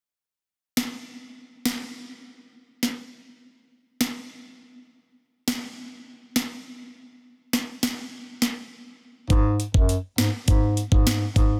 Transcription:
0.77 snare
1.65 snare
2.83 snare
4.01 snare
5.48 snare
6.36 snare
7.53 snare
7.83 snare
8.42 snare
9.30 bass clarinet G#2, kick, closed hi-hat
9.60 closed hi-hat
9.74 bass clarinet F#2, kick
9.89 closed hi-hat
10.18 bass clarinet G#2, snare, closed hi-hat
10.48 bass clarinet G#2, kick, closed hi-hat
10.77 closed hi-hat
10.92 bass clarinet G#2, kick
11.07 snare, closed hi-hat
11.36 bass clarinet G#2, kick, closed hi-hat

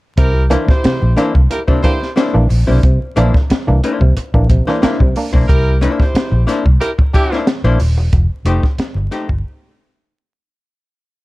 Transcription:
0.17 fingered electric bass C2, clav C3, horn section E4 G4 A#4, kick, closed hi-hat
0.50 clav E3 A#3 D4, hollow-body jazz guitar A#3 D4 E4 C5, closed hi-hat
0.68 clav A#3 D4, horn section E4 G4 C5, kick, snare
0.83 clav C3, muted hollow-body jazz guitar stroke, muted fingered electric bass stroke, snare, closed hi-hat
1.01 fingered electric bass A#1, muted hollow-body jazz guitar stroke
1.16 clav E3 A#3 D4, hollow-body jazz guitar A#3 D4 E4 C5, snare, closed hi-hat
1.34 fingered electric bass C2, clav A#3 D4, muted hollow-body jazz guitar stroke, kick
1.50 clav A#3 D4, horn section E4 G4 A#4, muted hollow-body jazz guitar stroke, closed hi-hat
1.67 clav C3, hollow-body jazz guitar A#3 D4 E4 C5, kick
1.83 clav E3 A#3 D4, horn section E4 G4 C5, muted hollow-body jazz guitar stroke, kick, closed hi-hat
2.00 muted hollow-body jazz guitar stroke, snare
2.16 hollow-body jazz guitar A#3 D4 E4 C5, snare, closed hi-hat
2.34 fingered electric bass A#1, clav E3 A#3 D4
2.49 fingered electric bass A#1, muted hollow-body jazz guitar stroke, open hi-hat
2.67 fingered electric bass B1, clav C3, hollow-body jazz guitar A#3 D4 E4 C5
2.83 fingered electric bass C2, clav C3, kick, closed hi-hat
3.16 fingered electric bass A#1, clav E3 A#3 D4, hollow-body jazz guitar A#3 D4 E4 C5, closed hi-hat
3.34 clav A#3 D4, kick, snare
3.50 muted hollow-body jazz guitar stroke, muted fingered electric bass stroke, snare, closed hi-hat
3.67 fingered electric bass C2, clav E3 A#3 D4, muted hollow-body jazz guitar stroke
3.84 hollow-body jazz guitar A#3 D4 E4 C5, closed hi-hat
4.00 fingered electric bass C2, clav C3, muted hollow-body jazz guitar stroke, kick
4.17 muted hollow-body jazz guitar stroke, closed hi-hat
4.34 fingered electric bass A#1, clav E3 A#3 D4, muted hollow-body jazz guitar stroke, kick
4.50 clav C3, kick, closed hi-hat
4.67 clav E3 A#3 D4, hollow-body jazz guitar A#3 D4 E4 C5, snare
4.82 hollow-body jazz guitar A#3 D4 E4 C5, clav A#3 D4, muted fingered electric bass stroke, snare, closed hi-hat
5.00 fingered electric bass C2, clav C3, kick
5.16 clav A#3 D4, muted hollow-body jazz guitar stroke, open hi-hat
5.33 fingered electric bass B1, hollow-body jazz guitar A#3 D4 E4 C5, kick
5.48 fingered electric bass C2, horn section E4 G4 A#4, kick, closed hi-hat
5.81 hollow-body jazz guitar A#3 D4 E4 C5, closed hi-hat
6.00 horn section E4 G4 C5, kick, snare
6.14 muted fingered electric bass stroke, muted hollow-body jazz guitar stroke, snare, closed hi-hat
6.31 fingered electric bass A#1, muted hollow-body jazz guitar stroke
6.47 hollow-body jazz guitar A#3 D4 E4 C5, snare, closed hi-hat
6.65 fingered electric bass C2, muted hollow-body jazz guitar stroke, kick
6.80 horn section E4 G4 A#4, muted hollow-body jazz guitar stroke, closed hi-hat
6.98 muted hollow-body jazz guitar stroke, kick
7.13 horn section D4 E4 G4, kick, closed hi-hat
7.32 hollow-body jazz guitar A#3 D4 E4 C5, snare
7.47 muted hollow-body jazz guitar stroke, snare, closed hi-hat
7.64 fingered electric bass A#1, hollow-body jazz guitar A#3 D4 E4 C5
7.79 fingered electric bass D#1, open hi-hat
7.97 fingered electric bass E1, muted hollow-body jazz guitar stroke
8.13 fingered electric bass F1, kick, closed hi-hat
8.45 fingered electric bass F1, hollow-body jazz guitar A3 D#4 G4 C5, closed hi-hat
8.63 kick, snare
8.78 muted fingered electric bass stroke, muted hollow-body jazz guitar stroke, snare, closed hi-hat
8.95 fingered electric bass G1, muted hollow-body jazz guitar stroke
9.11 hollow-body jazz guitar A3 D#4 G4 C5, snare, closed hi-hat
9.29 fingered electric bass G1, muted hollow-body jazz guitar stroke, kick

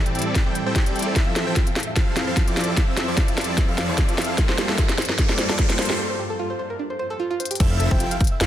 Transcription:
Already playing: ambient pad A2 E3 G3 C4 A4, supersaw synth G3 C4 E4 A4 D5
0.06 synth arpeggio sound G5, closed hi-hat
0.15 synth arpeggio sound G5, closed hi-hat
0.19 closed hi-hat
0.22 closed hi-hat
0.26 synth arpeggio sound E5
0.35 synth arpeggio sound E4, kick, snare, closed hi-hat
0.46 supersaw synth G3 C4 E4 A4 G5, synth arpeggio sound G5
0.55 synth arpeggio sound G5, closed hi-hat
0.66 supersaw synth G3 C4 E4 A4 G5, synth arpeggio sound C5
0.75 supersaw synth G3 C4 E4 A4 G5, synth arpeggio sound G4, kick, snare, closed hi-hat
0.86 supersaw synth G3 C4 E4 A4 D5, synth arpeggio sound G4, closed hi-hat
0.96 synth arpeggio sound G5, closed hi-hat
0.99 closed hi-hat
1.02 synth arpeggio sound A4, closed hi-hat
1.16 ambient pad F2 F3 E4, synth arpeggio sound E4, kick, snare, closed hi-hat, riser
1.26 synth arpeggio sound F5
1.36 synth arpeggio sound A4, snare, closed hi-hat
1.47 supersaw synth F3 C4 E4 A4 G5, synth arpeggio sound C5
1.56 synth arpeggio sound F4, kick, snare, closed hi-hat
1.67 synth arpeggio sound F5, closed hi-hat
1.76 synth arpeggio sound F5, snare, closed hi-hat
1.80 closed hi-hat
1.83 closed hi-hat
1.87 synth arpeggio sound E5
1.96 supersaw synth F3 C4 E4 A4 F5, synth arpeggio sound E4, kick, snare, closed hi-hat
2.07 synth arpeggio sound F5
2.16 synth arpeggio sound F5, snare, closed hi-hat
2.27 supersaw synth F3 C4 E4 A4 F5, synth arpeggio sound C5
2.37 synth arpeggio sound F4, kick, snare, closed hi-hat
2.47 supersaw synth F3 C4 E4 A4 D5, synth arpeggio sound F4, closed hi-hat
2.57 synth arpeggio sound F5, snare, closed hi-hat
2.61 closed hi-hat
2.64 synth arpeggio sound A4, closed hi-hat
2.77 supersaw synth F3, synth arpeggio sound E4, kick, snare, closed hi-hat
2.88 synth arpeggio sound F5
2.97 synth arpeggio sound A4, snare, closed hi-hat
3.08 supersaw synth F3 C4 E4 A4 D5, synth arpeggio sound C5
3.17 synth arpeggio sound F4, kick, snare, closed hi-hat
3.28 synth arpeggio sound F5, closed hi-hat
3.37 synth arpeggio sound F5, snare, closed hi-hat
3.41 closed hi-hat
3.44 closed hi-hat
3.48 synth arpeggio sound E5
3.57 synth arpeggio sound E4, kick, snare, closed hi-hat
3.68 supersaw synth F3 C4 E4 A4 F5, synth arpeggio sound F5
3.78 supersaw synth F3 C4 E4 A4 D5, synth arpeggio sound F5, snare, closed hi-hat
3.88 supersaw synth F3 C4 E4 A4 D5, synth arpeggio sound C5
3.98 synth arpeggio sound F4, kick, snare, closed hi-hat
4.08 synth arpeggio sound F4, closed hi-hat
4.18 supersaw synth F3 C4 E4 A4 F5, synth arpeggio sound F5, snare, closed hi-hat
4.22 closed hi-hat
4.24 closed hi-hat
4.29 synth arpeggio sound A4
4.38 supersaw synth G3 A#3 F4 A4 C5, synth arpeggio sound D4, kick, snare, closed hi-hat
4.49 synth arpeggio sound C5, snare
4.58 synth arpeggio sound G4, snare, closed hi-hat
4.69 supersaw synth G3 A#3 F4 A4 E5, synth arpeggio sound A4, snare
4.78 synth arpeggio sound F4, kick, snare, closed hi-hat
4.89 synth arpeggio sound C5, snare, closed hi-hat
4.98 synth arpeggio sound C5, snare, closed hi-hat
5.02 closed hi-hat
5.05 closed hi-hat
5.09 synth arpeggio sound A#4, snare
5.18 supersaw synth G3 A#3 F4 A4 D5, synth arpeggio sound D4, kick, snare, closed hi-hat
5.29 synth arpeggio sound C5, snare
5.38 synth arpeggio sound C5, snare, closed hi-hat
5.49 supersaw synth G3 A#3 F4 A4 D5, synth arpeggio sound A4, snare
5.59 synth arpeggio sound F4, kick, snare, closed hi-hat
5.69 supersaw synth G3 A#3 F4 A4 C5, synth arpeggio sound F4, snare, closed hi-hat
5.79 synth arpeggio sound C5, snare, closed hi-hat
5.82 closed hi-hat
5.85 closed hi-hat
5.90 synth arpeggio sound G4, snare
5.99 synth arpeggio sound D4
6.10 synth arpeggio sound C5
6.19 synth arpeggio sound G4
6.30 synth arpeggio sound A4
6.39 synth arpeggio sound F4
6.50 synth arpeggio sound C5
6.59 synth arpeggio sound C5
6.70 synth arpeggio sound A#4
6.79 synth arpeggio sound D4
6.90 synth arpeggio sound C5
6.99 synth arpeggio sound C5
7.10 synth arpeggio sound A4
7.20 synth arpeggio sound F4
7.31 synth arpeggio sound F4
7.40 synth arpeggio sound C5, closed hi-hat
7.45 closed hi-hat
7.51 synth arpeggio sound G4, closed hi-hat
7.55 closed hi-hat
7.60 analog synth bass F1, supersaw synth F3 C4 E4 A4 E5, ambient pad F3 C4 E4 G4 A4, synth arpeggio sound E4, digital synth lead E5, kick, closed hi-hat, crash, impact
7.71 synth arpeggio sound F5
7.80 synth arpeggio sound A4, closed hi-hat
7.91 analog synth bass F1, supersaw synth F3 C4 E4 A4 G5, synth arpeggio sound C5, digital synth lead G5, kick
8.00 synth arpeggio sound F4, closed hi-hat
8.11 synth arpeggio sound F5, closed hi-hat
8.20 synth arpeggio sound F5, kick, closed hi-hat
8.24 closed hi-hat
8.27 closed hi-hat
8.32 synth arpeggio sound E5
8.41 analog synth bass F1, supersaw synth F3 C4 E4 A4 F5, synth arpeggio sound E4, digital synth lead F5, snare, closed hi-hat

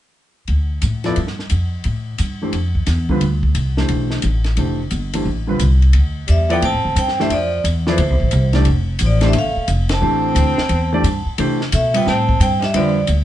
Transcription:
0.48 upright bass D2, ride
0.82 upright bass A2, hi-hat pedal, ride
1.04 grand piano F3 B3 E4 A4 D5, snare, ride
1.16 upright bass G2, ride
1.27 snare
1.39 snare
1.50 upright bass F2, hi-hat pedal, ride
1.84 upright bass A2, ride
2.18 upright bass G2, hi-hat pedal, ride
2.42 grand piano E3 A3 D4 G4 C5
2.53 upright bass F2, ride
2.75 kick
2.86 upright bass E2, snare, hi-hat pedal, ride
3.09 grand piano D3 G3 C4 F4 B4, kick
3.21 upright bass D2, ride
3.43 kick
3.55 upright bass C2, hi-hat pedal, ride
3.77 grand piano E3 A3 D4 G4 C5, snare
3.88 upright bass B1, ride
4.11 snare
4.22 upright bass A1, hi-hat pedal, ride
4.44 snare, ride
4.57 upright bass F1, grand piano E3 A3 D4 G4 C5, ride
4.91 upright bass G1, hi-hat pedal, ride
5.13 grand piano E3 A3 D4 G4 C5, ride
5.25 upright bass A1
5.47 grand piano D3 G3 C4 F4 B4
5.59 upright bass C2, hi-hat pedal, ride
5.82 ride
5.93 upright bass D2, ride
6.28 upright bass E2, alto saxophone G3, vibraphone E5, hi-hat pedal, ride
6.50 grand piano F3 B3 E4 A4 D5, alto saxophone B3, vibraphone G5, ride
6.62 upright bass A2, alto saxophone C4, vibraphone A5, ride
6.74 upright bass F2
6.85 upright bass D2
6.96 upright bass G2, alto saxophone C4, vibraphone G5, hi-hat pedal, ride
7.08 snare
7.20 grand piano E3 A3 D4 G4 C5, alto saxophone G3, vibraphone E5, snare
7.30 upright bass F2, alto saxophone F3, vibraphone D5, ride
7.64 upright bass E2, hi-hat pedal, ride
7.87 alto saxophone E3, grand piano F3 B3 E4 A4 D5, vibraphone C5, snare
7.98 upright bass D2, ride
8.10 upright bass C2
8.20 upright bass A1, kick
8.31 upright bass C2, hi-hat pedal, ride
8.53 grand piano E3 A3 D4 G4 D5, snare, ride
8.65 upright bass F1, ride
8.99 upright bass A1, hi-hat pedal, ride
9.03 alto saxophone F3, vibraphone D5
9.21 grand piano E3 A3 D4 G4 C5, snare, ride
9.26 alto saxophone G3, vibraphone E5
9.33 upright bass G1, alto saxophone A3, ride
9.39 vibraphone F5
9.56 muted upright bass stroke
9.68 upright bass F1, hi-hat pedal, ride
9.89 alto saxophone C4, snare, ride
9.93 vibraphone A5
10.01 upright bass A1, grand piano E3 A3 D4 G4 C5
10.35 upright bass D2, hi-hat pedal, ride
10.58 muted upright bass stroke, snare
10.69 upright bass E2, ride
10.93 grand piano E3 A3 D4 G4 D5
11.04 upright bass G2, hi-hat pedal, ride
11.26 muted upright bass stroke
11.38 upright bass C3, grand piano E3 A3 D4 G4 C5, ride
11.61 snare
11.72 upright bass B2, alto saxophone A3, vibraphone E5, hi-hat pedal, ride
11.94 grand piano G3 C4 F4 B4 E5, alto saxophone B3, vibraphone G5, ride
12.06 upright bass A2, alto saxophone C4, vibraphone A5, snare
12.29 kick
12.40 upright bass G2, alto saxophone C4, vibraphone G5, hi-hat pedal, ride
12.59 alto saxophone F3 G3, vibraphone D#5, snare, ride
12.64 vibraphone E5
12.74 upright bass F2, grand piano D3 G3 C4 F4 B4, alto saxophone F3, vibraphone D5, ride
13.07 upright bass D2, hi-hat pedal, ride

